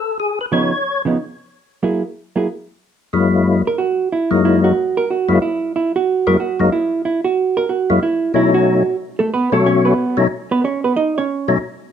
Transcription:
Already playing: tonewheel organ A4
0.20 tonewheel organ G#4
0.41 tonewheel organ B4
0.52 hollow-body jazz guitar C#3 F3 B3 D#4, tonewheel organ C#5
1.05 hollow-body jazz guitar C#3 F3 B3 D#4
1.83 hollow-body jazz guitar F#3 A#3 E4 G#4
2.36 hollow-body jazz guitar F#3 A#3 E4 G#4
3.13 tonewheel organ F#2 F#3 G#3 A#3 E4
3.67 hollow-body jazz guitar A#4
3.78 hollow-body jazz guitar F#4
4.12 hollow-body jazz guitar E4
4.31 tonewheel organ F#2 F#3 G#3 A#3 D#4
4.45 hollow-body jazz guitar E4
4.64 hollow-body jazz guitar F#4
4.97 hollow-body jazz guitar A#4
5.10 hollow-body jazz guitar F#4
5.28 tonewheel organ F#2 F#3 G#3 A#3 E4
5.42 hollow-body jazz guitar E4
5.76 hollow-body jazz guitar E4
5.96 hollow-body jazz guitar F#4
6.27 tonewheel organ F#2 F#3 G#3 A#3 E4, hollow-body jazz guitar A#4
6.40 hollow-body jazz guitar F#4
6.60 tonewheel organ F#2 F#3 G#3 A#3 D#4
6.72 hollow-body jazz guitar E4
7.05 hollow-body jazz guitar E4
7.24 hollow-body jazz guitar F#4
7.57 hollow-body jazz guitar A#4
7.69 hollow-body jazz guitar F#4
7.90 tonewheel organ F#2 F#3 G#3 A#3 E4
8.03 hollow-body jazz guitar E4
8.34 tonewheel organ B2 F#3 A3 C#4 D#4, hollow-body jazz guitar E4
8.54 hollow-body jazz guitar F#4
9.19 hollow-body jazz guitar A3 A4
9.34 hollow-body jazz guitar B3 B4
9.52 tonewheel organ B2 F#3 A3 C#4 F#4, hollow-body jazz guitar A3 A4
9.66 hollow-body jazz guitar C#4 C#5
9.85 hollow-body jazz guitar B3 B4
10.17 tonewheel organ B2 F#3 A3 C#4 D#4
10.51 hollow-body jazz guitar B3 B4
10.64 hollow-body jazz guitar C#4 C#5
10.84 hollow-body jazz guitar B3 B4
10.96 hollow-body jazz guitar D#4 D#5
11.18 hollow-body jazz guitar C#4 C#5
11.48 tonewheel organ B2 F#3 A3 C#4 D#4

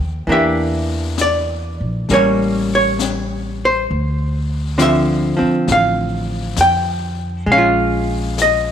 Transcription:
Already playing: hollow-body jazz guitar F3 A3 G4 G5
0.00 upright bass D#2
0.26 upright bass E2, hollow-body jazz guitar E3 A#3 D4, brush sweep
0.32 hollow-body jazz guitar G4 E5
1.18 hollow-body jazz guitar D5, snare, hi-hat pedal
1.80 upright bass A#1
2.09 upright bass A1, hollow-body jazz guitar G3 A#3 C#4, brush sweep, snare
2.14 hollow-body jazz guitar C#5
2.75 hollow-body jazz guitar C#5
2.99 snare, hi-hat pedal
3.65 hollow-body jazz guitar C5
3.89 upright bass D2, brush sweep
4.78 hollow-body jazz guitar D3 F3 C4, snare, hi-hat pedal
4.82 hollow-body jazz guitar E5
5.37 hollow-body jazz guitar F3 C4
5.41 muted upright bass stroke
5.67 upright bass A1, brush sweep, snare
5.72 hollow-body jazz guitar F5
6.57 upright bass F2, snare, hi-hat pedal
6.61 hollow-body jazz guitar G5
7.46 upright bass A#1, hollow-body jazz guitar G#3, brush sweep
7.52 hollow-body jazz guitar C#4 F5
7.58 hollow-body jazz guitar F4
8.38 hollow-body jazz guitar D#5, snare, hi-hat pedal

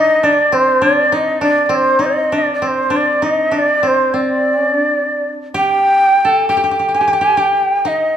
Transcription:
Already playing: koto D#4, shakuhachi D#5
0.23 koto D4, shakuhachi D5
0.52 koto C4, shakuhachi C5
0.82 koto D4, shakuhachi D5
1.12 koto D#4, shakuhachi D#5
1.41 koto D4, shakuhachi D5
1.66 koto C4, shakuhachi D5
1.75 shakuhachi C5
1.99 koto D#4
2.06 shakuhachi D#5
2.32 koto D4
2.38 shakuhachi D5
2.54 shakuhachi D5
2.62 koto C4
2.68 shakuhachi C5
2.90 koto D4
2.96 shakuhachi D5
3.22 koto D#4, shakuhachi D#5
3.51 koto D4
3.58 shakuhachi D5
3.83 koto C4
3.87 shakuhachi C5
4.14 koto C4, shakuhachi D5
4.56 koto C#4
4.82 koto D4
5.54 koto G4, shakuhachi G5
6.25 koto A4
6.49 koto G4, shakuhachi G5
6.57 koto G4
6.64 koto G4
6.71 koto G4
6.79 koto G4
6.89 koto G4
6.94 koto G4, shakuhachi G#5
7.01 koto G4
7.08 koto G4, shakuhachi G5
7.13 koto G4
7.21 koto G4, shakuhachi G#5
7.37 koto G4, shakuhachi G5
7.85 koto D#4, shakuhachi D#5

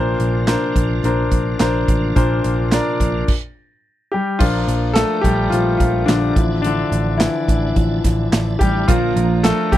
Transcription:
Already playing: picked electric bass A#1, grand piano A#2 D4 A#4 C5, tonewheel organ C3 F3 A#3 D4 F4
0.20 picked electric bass A#1, closed hi-hat
0.47 grand piano D4 A#4 C5, snare, clap, closed hi-hat
0.76 picked electric bass A#1, kick, closed hi-hat
1.04 picked electric bass A#1, grand piano D4 A#4 C5, closed hi-hat
1.32 picked electric bass A#1, kick, closed hi-hat
1.60 picked electric bass A#1, grand piano D4 A#4 C5, snare, clap, closed hi-hat
1.88 picked electric bass A1, kick, closed hi-hat
2.16 picked electric bass A#1, grand piano A#2 D4 A#4 C5, kick, closed hi-hat
2.44 picked electric bass A#1, closed hi-hat
2.72 grand piano D4 A#4 D5, snare, clap, closed hi-hat
3.00 picked electric bass A#1, kick, closed hi-hat
3.28 kick, crash
4.12 grand piano G3 G4
4.39 picked electric bass A#1, grand piano F3 A#3 D4 F4, tonewheel organ D4 A#4 D5 A#5, kick, crash
4.68 picked electric bass A#1, closed hi-hat
4.93 grand piano A3 A4, snare, clap, closed hi-hat
5.21 picked electric bass A#1, grand piano G4, kick, closed hi-hat
5.26 grand piano G3
5.50 picked electric bass A#1, grand piano F3 F4, closed hi-hat
5.77 picked electric bass A#1, grand piano F4, kick, closed hi-hat
5.82 grand piano F3
6.06 picked electric bass A#1, grand piano D4, snare, clap, closed hi-hat
6.10 grand piano D3
6.36 picked electric bass A1, grand piano F3 D4 E4, tonewheel organ E5 A5, kick, closed hi-hat
6.62 grand piano D4, closed hi-hat
6.66 grand piano D3
6.92 picked electric bass A1, closed hi-hat
7.18 grand piano E3 E4, snare, clap, closed hi-hat
7.48 picked electric bass A1, kick, closed hi-hat
7.76 picked electric bass A1, grand piano F3 D4 E4, kick, closed hi-hat
8.04 picked electric bass A1, kick, snare, closed hi-hat
8.32 picked electric bass A1, snare, clap, closed hi-hat
8.59 picked electric bass A1, grand piano G3 G4, kick, closed hi-hat
8.88 picked electric bass A#1, steel-string acoustic guitar A#2 D3 F3 A#3 D4 A#4, grand piano F3 F4, tonewheel organ A#4 A#5, kick, closed hi-hat
9.16 picked electric bass A#1, steel-string acoustic guitar F3 A#3 D4 A#4, closed hi-hat
9.43 steel-string acoustic guitar F3 A#3 D4 A#4, grand piano A3 A4, snare, clap, closed hi-hat
9.72 picked electric bass A#1, grand piano F3 G3 A#3 D4 G4, steel-string acoustic guitar F3 A#3 D4 A#4, kick, closed hi-hat

